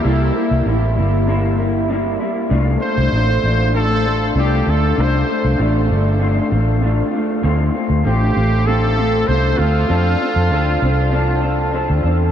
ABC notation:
X:1
M:4/4
L:1/16
Q:1/4=98
K:F
V:1 name="Trumpet"
E4 z12 | z2 c6 A4 G2 A2 | c4 z12 | z4 G4 A4 c2 F2- |
F12 z4 |]
V:2 name="Clean electric guitar"
[C,G,B,E]2 [G,B,E]2 [C,G,B,E]2 [G,B,E]2 [C,G,B,E]2 [G,B,E]2 [C,G,B,E]2 [G,B,E]2 | [C,A,DF]2 [A,DF]2 [C,A,DF]2 [A,DF]2 [C,A,DF]2 [A,DF]2 [C,A,DF]2 [A,DF]2 | [C,A,DF]2 [A,DF]2 [C,A,DF]2 [A,DF]2 [C,A,DF]2 [A,DF]2 [C,A,DF]2 [A,DF]2 | [D,A,CF]2 [A,CF]2 [D,A,CF]2 [A,CF]2 [D,A,CF]2 [A,CF]2 [D,A,CF]2 [A,CF]2 |
[F,CDA]2 [CDA]2 [F,CDA]2 [CDA]2 [F,CDA]2 [CDA]2 [F,CDA]2 [CDA]2 |]
V:3 name="Fingered electric bass" clef=bass
C,,2 z C,, A,,,2 G,,,8 z2 | C,,2 z C,, A,,,2 A,,,6 C,,2 D,,2 | C,,2 z C,, A,,,2 G,,,4 A,,,4 z2 | D,,2 z D,, A,,,2 A,,,6 C,,2 D,,2 |
F,,2 z F,, D,,2 C,,6- C,, D,, E,,2 |]